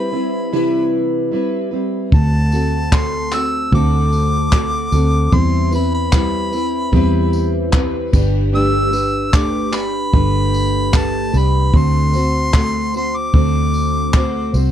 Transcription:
Already playing: G3 C4 E4 B4 B5
0.12 G3 C4 E4 B4
0.52 C3 E3 G3 C4 E4 B4
1.31 G3 C4 E4 B4
1.71 G3 C4 E4 B4
2.12 D2 D3 A3 C4 F#4 A4 A5, kick
2.52 C4 F#4 A4, tambourine
2.91 A3 C4 F#4 A4 C6, kick, clap
3.31 C4 F#4 A4 E6, clap, tambourine
3.72 D2 D3 A3 C4 F#4 A4 D6, kick
4.13 tambourine
4.51 A3 C4 F#4 A4, kick, clap
4.92 D2 C4 F#4 A4, tambourine
5.31 E2 E3 G3 C4 E4 C6, kick
5.71 C4 E4 B4, tambourine
5.75 B5
5.94 B5
6.12 G3 C4 E4 B4, kick, clap
6.52 C4 E4 B4, tambourine
6.92 E2 E3 G3 C4 E4 B4, kick
7.33 tambourine
7.73 G3 C4 E4 B4, kick, clap
8.12 G1 D4 G4 B4, kick, tambourine, crash
8.52 G3 A3 D4 G4 B4 E6
8.91 D4 G4 B4, tambourine
9.32 A3 D4 G4 B4 D6, kick, clap
9.72 D4 G4 B4, clap, tambourine
9.77 B5
10.13 G1 G3 A3 D4 G4 B4, kick
10.54 tambourine
10.92 A3 D4 G4 B4, kick, clap
10.97 A5
11.32 C2 D4 G4 B4, tambourine
11.38 B5
11.73 D2 D3 A3 C4 F#4 C5 C6, kick
12.13 C4 F#4 C5, tambourine
12.53 A3 C4 F#4 C5, kick, clap
12.94 C4 F#4 C5 C6, tambourine
13.17 D6
13.34 D2 D3 A3 C4 F#4 C5, kick
13.74 tambourine
14.14 A3 C4 F#4 C5, kick, clap
14.54 C2 C4 F#4 C5, tambourine

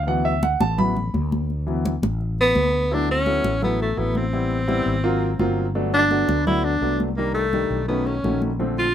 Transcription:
Already playing: D2
0.03 E3 F#3 F5
0.07 B3 F#5, high conga
0.25 E5, high conga
0.43 F#5, high conga
0.61 A1 A5, high conga
0.78 E3 F#3 B3 B5, high conga, low conga
0.96 high conga, low conga
1.14 D2, high conga
1.32 high conga
1.50 high conga
1.67 E3 F#3 B3, high conga
1.86 high conga
2.02 A1, high conga
2.21 high conga
2.38 B3, high conga
2.55 D2, high conga
2.91 F#3 A3 B3 D4 E4, high conga
3.09 C#4, high conga
3.26 F#3 A3 B3 E4, high conga
3.44 A1, high conga
3.62 F#3 A3 B3 E4, high conga, low conga
3.80 A3, high conga
3.97 A1 F#3 A3 B3 E4, high conga
4.15 C4, high conga
4.33 G3 B3 C4 E4, high conga
4.51 high conga
4.68 G3 B3 C4 E4, high conga
4.86 G#1, high conga
5.04 F#3 A#3 C4 F4, high conga
5.21 high conga
5.39 G1 F#3 A#3 C4 F4, high conga
5.75 F#3 A3 B3 D4, high conga
5.93 D4, high conga
6.11 F#3 A3 B3 D4, high conga
6.28 D2, high conga
6.47 F#3 A3 B3 D4 E4, high conga, low conga
6.64 D4, high conga
6.81 C2 F#3 A3 B3 D4, high conga
7.00 high conga
7.17 D#3 G3 A#3 D4, high conga
7.35 A3, high conga
7.53 D#3 G3 A#3 D4, high conga
7.70 B1, high conga
7.88 D#3 F#3 A3 B3 C#4, high conga
8.06 C#4, high conga
8.24 A#1 D#3 F#3 A3 C#4, high conga
8.42 high conga
8.59 D3 F3 A3 C4, high conga
8.77 F4, high conga

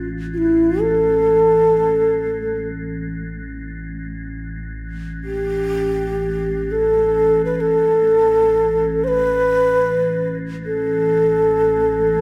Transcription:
Already playing: A1
0.33 F4
0.38 E4
0.81 A4
3.93 A1
5.24 G4
6.71 A4
7.45 B4
7.56 B4
7.60 A4
9.04 B4 C5
10.66 A4

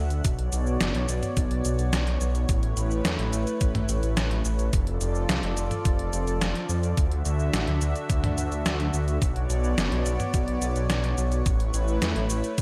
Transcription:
Already playing: D2 D3 D4 E5 F#5, impact
0.10 closed hi-hat, cabasa
0.24 B1 B3 F#4 C#5 D5, kick, closed hi-hat, cabasa
0.39 closed hi-hat
0.52 B1, closed hi-hat, cabasa
0.67 cabasa
0.81 F#1, snare, closed hi-hat, cabasa
0.95 B1, closed hi-hat
1.09 B1, closed hi-hat, cabasa
1.23 closed hi-hat, mid tom, cabasa
1.37 B1, kick, closed hi-hat, cabasa
1.51 closed hi-hat
1.65 B1, closed hi-hat, cabasa
1.79 B1, closed hi-hat, cabasa
1.93 B1, snare, closed hi-hat, cabasa
2.07 closed hi-hat
2.21 B1, closed hi-hat, cabasa
2.35 closed hi-hat, cabasa
2.48 A1 A3 E4 B4, kick, closed hi-hat, cabasa
2.63 closed hi-hat
2.77 A1, closed hi-hat, cabasa
2.91 cabasa
3.05 E2, snare, closed hi-hat, cabasa
3.19 A1, closed hi-hat
3.33 A1, closed hi-hat, cabasa
3.47 closed hi-hat, cabasa
3.61 A1, kick, closed hi-hat, cabasa
3.75 closed hi-hat, mid tom
3.89 A1, closed hi-hat, cabasa
4.03 A1, closed hi-hat, cabasa
4.17 A1, snare, closed hi-hat, cabasa
4.31 closed hi-hat
4.45 A1, closed hi-hat, cabasa
4.59 closed hi-hat, cabasa
4.73 F1 F3 F4 A4 D5, kick, closed hi-hat, cabasa
4.87 closed hi-hat
5.01 F1, closed hi-hat, cabasa
5.15 cabasa
5.29 C2, snare, closed hi-hat, cabasa
5.43 F1, closed hi-hat
5.57 F1, closed hi-hat, cabasa
5.71 closed hi-hat, mid tom, cabasa
5.85 F1, kick, closed hi-hat, cabasa
5.99 closed hi-hat
6.13 F1, closed hi-hat, cabasa
6.27 F1, closed hi-hat, cabasa
6.41 F1, snare, closed hi-hat, cabasa
6.55 closed hi-hat
6.69 F2, closed hi-hat, cabasa
6.83 closed hi-hat, cabasa
6.97 D2 D3 D4 F#4 E5, kick, closed hi-hat, cabasa
7.12 closed hi-hat
7.25 D2, closed hi-hat, cabasa
7.39 cabasa
7.53 A1, snare, closed hi-hat, cabasa
7.67 D2, closed hi-hat
7.81 D2, closed hi-hat, cabasa
7.96 closed hi-hat, cabasa
8.10 D2, kick, closed hi-hat, cabasa
8.24 closed hi-hat, mid tom
8.38 D2, closed hi-hat, cabasa
8.52 D2, closed hi-hat, cabasa
8.66 D2, snare, closed hi-hat, cabasa
8.80 closed hi-hat
8.94 D2, closed hi-hat, cabasa
9.08 closed hi-hat, cabasa
9.22 B1 B3 C#5 D5, kick, closed hi-hat, cabasa
9.36 closed hi-hat
9.50 B1, closed hi-hat, cabasa
9.64 cabasa
9.78 F#1, snare, closed hi-hat, cabasa
9.92 B1, closed hi-hat
10.06 B1, closed hi-hat, cabasa
10.20 closed hi-hat, mid tom, cabasa
10.34 B1, kick, closed hi-hat, cabasa
10.48 closed hi-hat
10.62 B1, closed hi-hat, cabasa
10.76 B1, closed hi-hat, cabasa
10.90 B1, snare, closed hi-hat, cabasa
11.04 closed hi-hat
11.18 B1, closed hi-hat, cabasa
11.32 closed hi-hat, cabasa
11.46 A1 A3 E4 B4, kick, closed hi-hat, cabasa
11.60 closed hi-hat
11.74 A1, closed hi-hat, cabasa
11.88 cabasa
12.02 E2, snare, closed hi-hat, cabasa
12.16 A1, closed hi-hat
12.30 A1, closed hi-hat, cabasa
12.44 closed hi-hat, cabasa
12.58 A1, kick, closed hi-hat, cabasa

